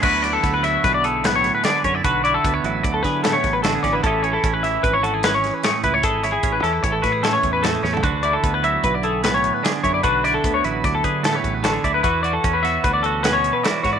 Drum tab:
CC |x-----------------------------|------------------------------|------------------------------|------------------------------|
HH |---x--x--x--x--x--x--x--x--x--|x--x--x--x--x--x--x--x--x--x--|x--x--x--x--x--x--x--x--x--x--|x--x--x--x--x--x--x--x--x-----|
SD |---o--o--o--o-----o--o--o-----|---------------o--o--o--o--o--|---------o--------o--o--o-----|---o-----o-----o--o-----o--o--|
FT |------------------------------|------------------------------|------------------------------|-----------------------------o|
BD |o-----o-----o--------------o--|o-----o-----o--o-----o-----o--|o-----o-----o--------------o--|o-----o-----o--o-----o--------|

CC |------------------------------|------------------------------|------------------------------|
HH |x--x--x--x--x--x--x--x--x--x--|x--x--x--x--x--x--x--x--x--x--|x--x--x--x--x--x--x--x--x--x--|
SD |------------------o-----o-----|---o--------o-----o-----o-----|---------o--------o-----o--o--|
FT |------------------------------|------------------------------|------------------------------|
BD |o-----o-----o--------------o--|o-----o-----o--o-----o-----o--|o-----o-----o--------------o--|